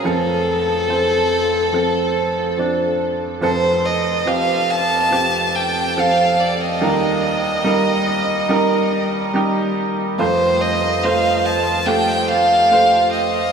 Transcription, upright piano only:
X:1
M:4/4
L:1/8
Q:1/4=71
K:Fmix
V:1 name="Upright piano"
[F,CA]2 [F,Cc]2 [F,CA]2 [F,CD]2 | [F,CA]2 [F,CG]2 [F,CG]2 [F,CA]2 | [G,EB]2 [G,EB]2 [G,EB]2 [G,EG]2 | [A,Fc]2 [A,Fc]2 [A,FG]2 [A,Fc]2 |]
V:2 name="Upright piano" clef=bass
[F,,,F,,]8 | [F,,,F,,]8 | [E,,E,]8 | [F,,,F,,]8 |]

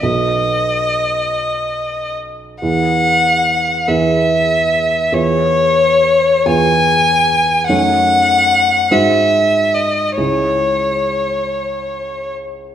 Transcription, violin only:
X:1
M:6/8
L:1/8
Q:3/8=47
K:C#m
V:1 name="Violin"
d4- d z | f3 e3 | c3 g3 | f3 e2 d |
c4- c z |]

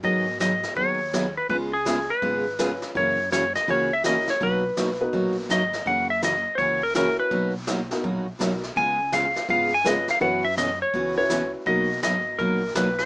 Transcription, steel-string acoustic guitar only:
X:1
M:4/4
L:1/16
Q:"Swing" 1/4=165
K:B
V:1 name="Steel-string acoustic guitar"
[D,F,B,DG]2 z2 [D,F,B,DG] z3 [D,F,B,DG]2 z2 [D,F,B,DG] z3 | [C,G,B,^EG]2 z2 [C,G,B,EG] z3 [C,G,B,EG]2 z2 [C,G,B,EG] z3 | [C,E,A,CF]2 z2 [C,E,A,CF] z3 [C,E,A,CF]2 z2 [C,E,A,CF] z3 | [B,,F,A,DF]2 z2 [B,,F,A,DF] z3 [B,,F,A,DF]2 z2 [B,,F,A,DF] z3 |
[C,E,A,CF]2 z2 [C,E,A,CF] z3 [C,E,A,CF]2 z2 [C,E,A,CF] z3 | [B,,F,A,DF]2 z2 [B,,F,A,DF] z3 [B,,F,A,DF]2 z2 [B,,F,A,DF] z3 | [C,G,B,^EG]2 z2 [C,G,B,EG] z3 [C,G,B,EG]2 z2 [C,G,B,EG] z3 | [B,,E,B,CF]2 z2 [B,,E,B,CF] z3 [B,,E,B,CF]2 z2 [B,,E,B,CF] z3 |
[B,,F,A,DF]2 z2 [B,,F,A,DF] z3 [B,,F,A,DF]2 z2 [B,,F,A,DF] z3 |]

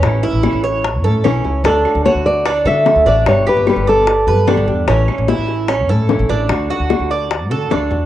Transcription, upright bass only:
X:1
M:4/4
L:1/16
Q:1/4=148
K:D
V:1 name="Upright bass" clef=bass
A,,,2 z A,,,2 A,,,4- A,,, A,,2 B,,,2 C,,2 | D,,2 z D,,2 D,,4- D,, D,3 D,, A,,,2 | G,,,2 z G,,,2 G,,,4- G,,, G,,3 G,,, E,,2 | A,,,2 z A,,,2 A,,,4- A,,, A,,3 A,,, A,,,2 |
D,,2 z D,,2 D,,4- D,, D,2 D,,2 E,,2 |]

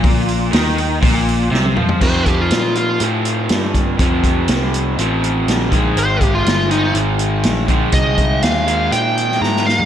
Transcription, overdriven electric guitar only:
X:1
M:4/4
L:1/8
Q:1/4=122
K:F
V:1 name="Overdriven electric guitar" clef=bass
B,,2 _E,2 B,,2 C, F, | [F,,C,F,]4 [F,,C,F,]4 | [F,,C,F,]4 [F,,C,F,]3 [_A,,_E,_A,]- | [_A,,_E,_A,]3 [A,,E,A,]4 [A,,E,A,]- |
[_A,,_E,_A,]3 [A,,E,A,]4 z |]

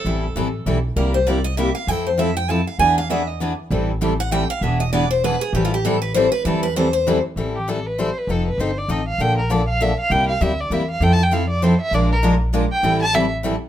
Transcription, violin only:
X:1
M:3/4
L:1/8
Q:"Swing" 1/4=197
K:Am
V:1 name="Violin"
z6 | z6 | z6 | z6 |
z6 | z6 | z6 | z6 |
z G A B c B | A B c d _e f | g _B d f e f | g f e d e f |
(3g a g f d c e | d _B z3 g- | g a e z3 |]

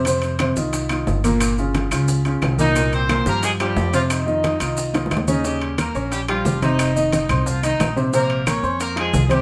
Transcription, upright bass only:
X:1
M:4/4
L:1/8
Q:1/4=178
K:Ebmix
V:1 name="Upright bass" clef=bass
F,,3 C,,3 G,,,2- | G,,,3 D,,3 C,,2- | C,,3 G,,3 F,,2- | F,,3 C,,3 E,,2- |
E,,3 B,,,3 F,,,2- | F,,,3 C,,3 B,,,2- | B,,,3 F,,3 C,,2 |]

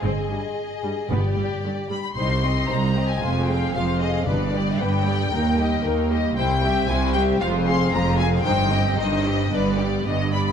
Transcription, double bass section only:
X:1
M:4/4
L:1/8
Q:1/4=114
K:Cm
V:1 name="Double bass section" clef=bass
G,,, z3 G,,, z3 | C,,2 C,,2 F,,,2 F,,,2 | G,,,2 G,,,2 E,,2 E,,2 | C,,2 C,,2 F,,,2 F,,,2 |
G,,,2 G,,,2 G,,,2 G,,,2 |]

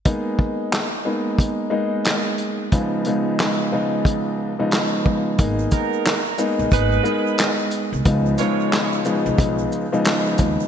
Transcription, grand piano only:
X:1
M:4/4
L:1/16
Q:"Swing 16ths" 1/4=90
K:G#dor
V:1 name="Grand piano"
[G,A,B,D]4- [G,A,B,D] z [G,A,B,D]4 [G,A,B,D]6 | [C,,E,G,B,D]2 [C,,E,G,B,D]4 [C,,E,G,B,D]4- [C,,E,G,B,D] [C,,E,G,B,D]3 [C,,E,G,B,D]2 | [G,A,B,D]4- [G,A,B,D] z [G,A,B,D]4 [G,B,DA]6 | [C,,E,G,B,D]2 [C,,E,G,B,D]4 [C,,E,G,B,D]4- [C,,E,G,B,D] [C,,E,G,B,D]3 [C,,E,G,B,D]2 |]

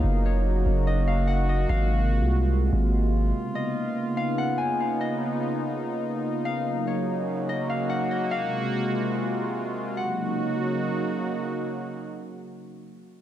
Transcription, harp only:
X:1
M:4/4
L:1/8
Q:1/4=145
K:F#
V:1 name="Harp"
z c z2 d e f d | e8 | z d z2 e f g e | d6- d e |
z c z2 d e f d | e8 | f6 z2 | z8 |]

